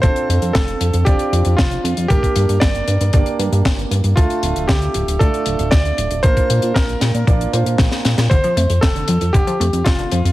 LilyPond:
<<
  \new Staff \with { instrumentName = "Electric grand piano" } { \time 4/4 \key f \major \tempo 4 = 116 c''4 a'4 g'4 f'4 | g'4 d''4. r4. | f'4 g'4 a'4 d''4 | c''4 bes'4 r2 |
c''4 a'4 g'4 f'4 | }
  \new Staff \with { instrumentName = "Grand piano" } { \time 4/4 \key f \major <c' d' f' a'>2 <c' d' f' d''>2 | <bes d' g' bes'>2 <bes d' g' d''>2 | <a d' f' a'>2 <a d' f' d''>2 | <bes d' f' bes'>2 <bes d' f' d''>8 <bes d' f' c''>4. |
r1 | }
  \new Staff \with { instrumentName = "Synth arpeggio sound" } { \clef bass \time 4/4 \key f \major r1 | r1 | r1 | r1 |
d16 f16 a16 r16 c'16 d16 f16 r16 d16 f16 a16 r16 c'16 d16 f16 r16 | }
  \new Staff \with { instrumentName = "Analog synth bass" } { \clef bass \time 4/4 \key f \major f,,16 r16 f,16 f,16 f,,8 f,16 f,16 f,,16 r16 f,16 f,16 f,,8 f,16 f,16 | g,,16 r16 g,16 g,16 g,,8 g,16 g,16 g,,16 r16 g,16 g,16 g,,8 g,16 g,16 | d,16 r16 d,,16 d,,16 d,8 d,,16 d,,16 d,16 r16 d,,16 d,,16 d,8 d,,16 d,,16 | bes,,16 r16 bes,16 bes,16 bes,,8 bes,16 bes,16 bes,,8 bes,16 bes,16 bes,,16 r16 bes,16 bes,16 |
f,,16 r16 f,16 f,16 f,,8 f,16 f,16 f,,16 r16 f,16 f,16 f,,8 f,16 f,16 | }
  \new DrumStaff \with { instrumentName = "Drums" } \drummode { \time 4/4 <hh bd>16 hh16 hh16 hh16 <hh bd sn>16 hh16 hh16 hh16 <hh bd>16 hh16 hh16 hh16 <hh bd sn>16 hh16 hh16 hh16 | <hh bd>16 <hh bd>16 hh16 hh16 <hh bd sn>16 hh16 hh16 hh16 <hh bd>16 hh16 hh16 hh16 <hh bd sn>16 hh16 hh16 hh16 | <hh bd>16 hh16 hh16 hh16 <hh bd sn>16 hh16 hh16 hh16 <hh bd>16 hh16 hh16 hh16 <hh bd sn>16 hh16 hh16 hh16 | <hh bd>16 <hh bd>16 hh16 hh16 <hh bd sn>16 hh16 <hh sn>16 hh16 <hh bd>16 hh16 hh16 hh16 <hh bd sn>16 <hh sn>16 <hh sn>16 <hh sn>16 |
<hh bd>16 hh16 hh16 hh16 <hh bd sn>16 hh16 hh16 hh16 <hh bd>16 hh16 hh16 hh16 <hh bd sn>16 hh16 hh16 hh16 | }
>>